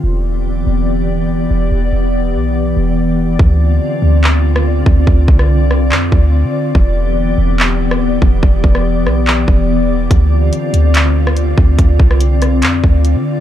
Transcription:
<<
  \new Staff \with { instrumentName = "Ambient pad" } { \time 4/4 \key d \dorian \tempo 4 = 143 << { d''1~ | d''1 | d''1~ | d''1~ |
d''1~ | d''1~ | d''1~ | d''1 | } \\ { <e b g'>1~ | <e b g'>1 | <d c' f'>1~ | <d c' f'>1 |
<e b g'>1~ | <e b g'>1 | <d c' f'>1~ | <d c' f'>1 | } >> }
  \new Staff \with { instrumentName = "808-style bass" } { \clef bass \time 4/4 \key d \dorian e,,4. e,,2 e,,8 | e,,8 e,,4 b,,4 e,,4. | d,4 r8 d,2 d,8 | d,8 c,4. f,8 d,8. d8. |
e,,4. e,,2 e,,8 | e,,8 e,,4 b,,4 e,,4. | d,4 r8 d,2 d,8 | d,8 c,4. f,8 d,8. d8. | }
  \new DrumStaff \with { instrumentName = "Drums" } \drummode { \time 4/4 r4 r4 r4 r4 | r4 r4 r4 r4 | bd4 r4 hc8. ss16 r8 bd8 | bd8 bd16 ss16 r8 ss8 hc8 bd8 r4 |
bd4 r4 hc8. ss16 r8 bd8 | bd8 bd16 ss16 r8 ss8 hc8 bd8 r4 | <hh bd>4 hh8 hh8 <hc hh>8. ss16 hh8 bd8 | <hh bd>8 bd16 ss16 hh8 <hh ss>8 <hc hh>8 bd8 hh4 | }
>>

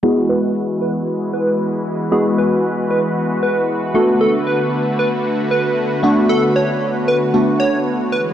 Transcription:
<<
  \new Staff \with { instrumentName = "Digital synth lead" } { \time 4/4 \key e \mixolydian \tempo 4 = 115 gis'8 b'8. r16 b'16 r8. b'8. r8. | gis'8 b'8. r16 b'16 r8. b'8 r8 a'16 r16 | a'8 b'8. r16 b'16 r8. b'8. r8. | a'8 cis''8. r16 b'16 r8. cis''8 r8 b'16 r16 | }
  \new Staff \with { instrumentName = "Synth keys" } { \time 4/4 \key e \mixolydian <gis b e' fis'>1 | <gis b e' fis'>2.~ <gis b e' fis'>8 <a b d' fis'>8~ | <a b d' fis'>2.~ <a b d' fis'>8 <a b d' fis'>8~ | <a b d' fis'>2 <a b d' fis'>4. r8 | }
  \new Staff \with { instrumentName = "Supersaw synth" } { \clef bass \time 4/4 \key e \mixolydian << { <fis' b'>1~ | <fis' b'>1~ | <fis' b'>1~ | <fis' b'>1 | } \\ { <e gis>1~ | <e gis>2.~ <e gis>8 <d a>8~ | <d a>1~ | <d a>2.~ <d a>8 <e gis>8 | } >> }
>>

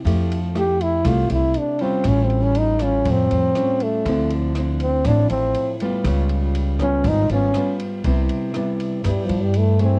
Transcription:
<<
  \new Staff \with { instrumentName = "Trombone" } { \time 4/4 \key c \major \tempo 4 = 120 r4 g'8 e'8 f'8 e'8 d'8 c'8 | \tuplet 3/2 { cis'8 bis8 cis'8 } ees'8 cis'8 bis4. a8~ | a8 r4 c'8 d'8 c'4 r8 | r4. des'8 ees'8 des'4 r8 |
r2 \tuplet 3/2 { g8 f8 g8 } a8 c'8 | }
  \new Staff \with { instrumentName = "Nylon-string guitar" } { \time 4/4 \key c \major << { <a e' g'>8 r8 <a e' g'>4 <a e' g'>4. <g des' f'>8~ | <g des' f'>4. <g eis'>4. <g cis' eis'>4 | <f c' e'>4 <f c' e'>8 r8 <f c' e'>4. <g b f'>8~ | <g b f'>4. <g ces' f'>4 <g ces' f'>8 <g ces' f'>4 |
<g b e'>4 <g b e'>4 <g b e'>4 r8 <a e' aes'>8 | } \\ { f2 c2 | a,2 a,2 | d2 a,2 | des2 aes,2 |
c2 g,2 | } >> }
  \new Staff \with { instrumentName = "Upright bass" } { \clef bass \time 4/4 \key c \major f,2 c,8 c,8 r4 | a,,2 eis,8 eis,8 r4 | d,2 a,,8 a,,8 r4 | des,2 aes,,8 aes,,8 r4 |
c,8 r4. g,16 r16 g,4. | }
  \new DrumStaff \with { instrumentName = "Drums" } \drummode { \time 4/4 <bd cymr>8 cymr8 <cymr ss>8 cymr8 <bd cymr ss>8 cymr8 cymr8 cymr8 | <bd cymr ss>8 cymr8 cymr8 <cymr ss>8 <bd cymr>8 cymr8 <cymr ss>8 cymr8 | <bd cymr>8 cymr8 <cymr ss>8 cymr8 <bd cymr ss>8 cymr8 cymr8 cymr8 | <bd cymr ss>8 cymr8 cymr8 <bd cymr ss>8 <bd cymr>8 cymr8 <cymr ss>8 cymr8 |
<bd cymr>8 cymr8 <cymr ss>8 cymr8 <bd cymr ss>8 cymr8 cymr8 cymr8 | }
>>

